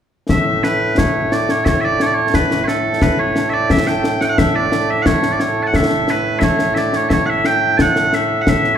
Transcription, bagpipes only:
0.30 8.78 A2 medium
0.30 8.78 A3 medium
0.30 0.64 E5 loud
0.64 0.98 B4 loud
0.98 1.32 C#5 medium
1.32 1.50 D5 medium
1.50 1.65 C#5 medium
1.65 1.81 C#5 medium
1.65 1.68 E5 medium
1.81 2.01 D5 medium
1.81 1.85 E5 medium
2.01 2.06 C#5 loud
2.06 2.14 D5 medium
2.14 2.35 C#5 loud
2.35 2.64 B4 medium
2.64 3.02 A4 medium
2.64 2.67 C#5 medium
3.02 3.19 B4 loud
3.19 3.50 C#5 medium
3.50 3.71 D5 loud
3.50 3.54 E5 loud
3.71 3.87 E5 loud
3.87 4.21 G5 medium
4.21 4.24 F#5 loud
4.21 4.29 G5 medium
4.29 4.38 F#5 medium
4.38 4.56 E5 loud
4.56 4.90 D5 medium
4.90 5.02 E5 medium
5.02 5.06 F#5 medium
5.06 5.32 C#5 medium
5.32 5.40 D5 medium
5.40 5.63 C#5 medium
5.63 5.67 A5 medium
5.67 5.75 F#5 medium
5.75 6.10 E5 loud
6.10 6.39 B4 medium
6.39 6.43 E5 medium
6.43 6.74 C#5 medium
6.74 6.96 D5 medium
6.74 6.78 E5 medium
6.96 7.09 C#5 medium
7.09 7.26 C#5 medium
7.09 7.13 E5 medium
7.26 7.46 E5 medium
7.26 7.29 F#5 medium
7.46 7.77 G5 loud
7.77 8.14 F#5 medium
7.77 7.81 A5 medium
8.14 8.41 E5 medium
8.41 8.49 F#5 medium
8.49 8.75 E5 loud

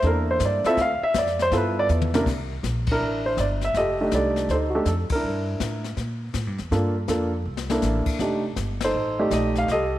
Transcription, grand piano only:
0.04 0.61 A#3 medium
0.04 0.61 D4 medium
0.04 0.61 E4 medium
0.04 0.61 A4 medium
0.04 0.29 A#4 medium
0.31 0.42 C5 medium
0.46 0.67 D5 medium
0.66 0.77 C4 medium
0.66 0.77 E4 medium
0.66 0.77 F4 medium
0.66 0.77 A4 medium
0.66 0.78 E5 loud
0.81 1.03 F5 loud
1.03 1.15 E5 loud
1.18 1.40 D5 medium
1.42 1.53 C5 loud
1.52 2.09 B3 medium
1.52 2.09 E4 medium
1.52 2.09 F4 medium
1.52 2.09 A4 medium
1.57 1.79 B4 medium
1.79 1.86 D5 loud
2.15 2.26 C3 medium
2.15 2.26 A#3 medium
2.15 2.26 D4 medium
2.15 2.26 E4 medium
2.15 2.26 A#4 medium
2.91 3.60 D4 medium
2.91 3.60 E4 medium
2.91 3.25 A#4 medium
3.26 3.39 C5 medium
3.40 3.45 D5 medium
3.65 3.75 E5 medium
3.77 4.00 G4 medium
3.77 4.14 A4 medium
3.77 4.11 D#5 loud
4.01 4.48 A3 medium
4.01 4.47 D4 medium
4.01 4.48 D#4 medium
4.01 4.14 G4 medium
4.15 4.74 G4 medium
4.15 4.51 A4 medium
4.15 4.52 D5 medium
4.51 4.74 D#4 medium
4.51 4.73 A4 medium
4.51 4.56 C5 medium
4.70 4.75 F#4 medium
4.75 4.86 A3 medium
4.75 4.86 D4 medium
4.75 4.86 D#4 medium
4.75 4.80 G4 medium
4.75 4.85 A4 medium
4.87 4.92 A4 medium
5.12 5.83 D4 medium
5.12 5.83 E4 medium
5.12 5.82 A#4 medium
6.71 6.94 A#3 medium
6.71 6.94 D4 medium
6.71 6.94 F4 medium
6.71 6.94 A4 medium
7.08 7.30 A#3 medium
7.08 7.31 D4 medium
7.08 7.31 F4 medium
7.08 7.31 A4 medium
7.71 8.18 A#3 medium
7.71 8.18 D4 medium
7.71 8.18 E4 medium
7.71 8.18 A4 medium
8.21 8.42 A3 medium
8.21 8.42 D4 medium
8.21 8.43 D#4 medium
8.21 8.42 G4 medium
8.84 9.18 D#4 medium
8.84 9.53 A4 medium
8.84 9.21 C5 medium
9.19 9.66 A3 medium
9.19 9.66 D#4 medium
9.19 9.66 G4 medium
9.19 9.66 D5 medium
9.33 9.57 D#5 medium
9.58 9.70 F5 loud
9.72 9.99 G4 medium
9.72 9.99 A4 medium
9.72 9.99 D#5 loud

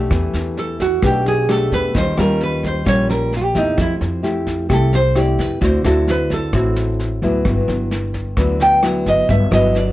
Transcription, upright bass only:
0.10 0.32 E2 medium
0.33 0.99 E2 medium
1.02 1.67 B1 medium
1.72 1.93 E2 medium
1.95 2.16 D#2 medium
2.18 2.83 D#2 medium
2.86 3.51 A#1 medium
3.55 3.76 E2 medium
3.78 3.99 F2 medium
4.01 4.66 F2 medium
4.70 5.35 C2 medium
5.39 5.60 F2 medium
5.61 5.83 D2 loud
5.84 6.50 D2 loud
6.53 7.18 A1 medium
7.22 7.44 D2 medium
7.45 7.67 G1 medium
7.68 8.33 G1 medium
8.37 9.02 D2 medium
9.06 9.27 G1 medium
9.29 9.50 G1 medium
9.51 9.92 G1 loud

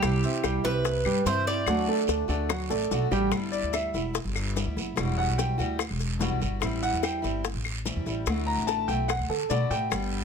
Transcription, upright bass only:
0.02 0.22 C2 loud
0.43 0.63 C2 medium
0.64 1.03 C2 medium
1.05 1.25 G2 medium
1.25 1.65 G2 medium
1.66 1.86 D2 loud
2.08 2.28 D2 medium
2.29 2.68 D2 medium
2.70 2.90 A1 medium
2.91 3.10 B1 medium
3.11 3.30 A1 medium
3.32 3.61 G1 medium
3.63 3.92 D2 medium
3.94 4.23 E1 medium
4.24 4.64 G1 medium
4.66 4.76 D2 medium
4.76 4.96 F#1 medium
4.97 5.27 E1 medium
5.28 5.57 B1 medium
5.59 5.88 D2 medium
5.90 6.29 E1 medium
6.31 6.41 B1 medium
6.42 6.61 G1 medium
6.62 6.92 A1 medium
6.93 7.23 E2 medium
7.24 7.53 G1 medium
7.54 7.94 A1 medium
7.96 8.05 E2 medium
8.06 8.26 A1 medium
8.26 8.56 D2 medium
8.57 8.87 A1 medium
8.88 9.18 B1 medium
9.19 9.28 D2 medium
9.29 9.48 D3 medium
9.50 9.69 B2 medium
9.70 9.89 A2 medium
9.91 10.21 G1 medium

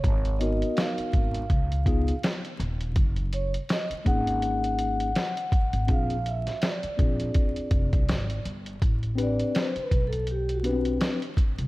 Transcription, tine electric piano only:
0.39 1.43 B3 medium
0.39 1.44 D#4 medium
0.39 1.44 F#4 medium
0.39 1.45 A#4 medium
1.85 2.13 B3 medium
1.85 2.14 D#4 medium
1.85 2.14 F4 medium
1.85 2.14 G#4 medium
4.05 5.09 A#3 medium
4.05 5.09 C#4 medium
4.05 5.10 D#4 medium
4.05 5.10 G#4 medium
5.87 6.15 C4 medium
5.87 6.16 D4 medium
5.87 6.16 F4 medium
5.87 6.17 G#4 medium
6.97 8.01 C4 medium
6.97 8.02 D4 medium
6.97 8.02 F4 medium
6.97 8.03 G#4 medium
9.15 9.70 C4 medium
9.15 9.71 D4 medium
9.15 9.71 G4 medium
9.15 9.71 B4 medium
10.63 10.71 B3 medium
10.63 11.18 D4 medium
10.63 11.18 G4 medium
10.63 11.19 B4 medium
10.70 11.20 C4 medium

